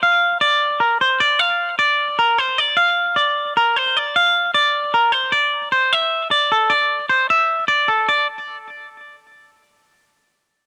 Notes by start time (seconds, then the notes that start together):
0.03 F5
0.41 D5
0.80 A#4
1.01 C5
1.20 D5
1.39 F5
1.79 D5
2.19 A#4
2.38 C5
2.58 D5
2.77 F5
3.16 D5
3.57 A#4
3.76 C5
3.97 D5
4.16 F5
4.54 D5
4.94 A#4
5.12 C5
5.32 D5
5.72 C5
5.93 E5
6.31 D5
6.52 A4
6.70 D5
7.09 C5
7.30 E5
7.68 D5
7.88 A4
8.09 D5